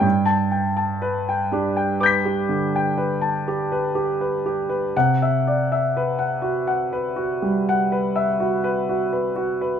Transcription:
<<
  \new Staff \with { instrumentName = "Grand piano" } { \time 5/4 \key g \major \tempo 4 = 61 << { r16 a''8 r4 r16 <d''' g''' b'''>2. | fis''8 r1 r8 | } \\ { g''8 g''16 a''16 b'16 g''16 g'16 g''16 b'16 g'16 d16 g''16 b'16 a''16 g'16 b'16 g'16 b'16 g'16 b'16 | r16 e''16 d''16 e''16 b'16 fis''16 fis'16 fis''16 b'16 fis'16 g16 fis''16 b'16 e''16 fis'16 b'16 fis'16 b'16 fis'16 b'16 | } >> }
  \new Staff \with { instrumentName = "Grand piano" } { \clef bass \time 5/4 \key g \major g,4. d'8 r2. | c1~ c4 | }
>>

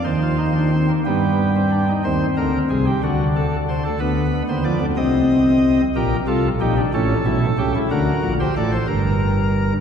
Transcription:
<<
  \new Staff \with { instrumentName = "Pipe organ" } { \time 6/8 \key c \minor \tempo 4. = 61 << { c''4. g'4. | c''8 bes'8 aes'16 g'16 fis'8 a'8 c''16 a'16 | b'8. c''16 d''8 ees''4. | bes'8 a'8 g'8 a'4. |
bes'8. c''16 d''16 c''16 bes'4. | } \\ { ees'16 f'16 ees'16 d'16 c'16 bes16 b8. c'16 d'16 ees'16 | c'4. d'4. | b4. c'4. | g'8 f'8 ees'16 d'16 cis'8 e'8 g'16 e'16 |
fis'8. g'16 a'8 r4. | } >> }
  \new Staff \with { instrumentName = "Pipe organ" } { \clef bass \time 6/8 \key c \minor <ees, ees>4. <g, g>4. | <ees, ees>8 <d, d>8 <c, c>8 <d, d>4. | <d, d>8. <ees, ees>16 <f, f>16 <d, d>16 <c, c>4. | <bes,, bes,>8 <c, c>8 <bes,, bes,>8 <a,, a,>8 <b,, b,>8 <cis, cis>8 |
<d, d>8 <bes,, bes,>8 <a,, a,>8 <g,, g,>4. | }
>>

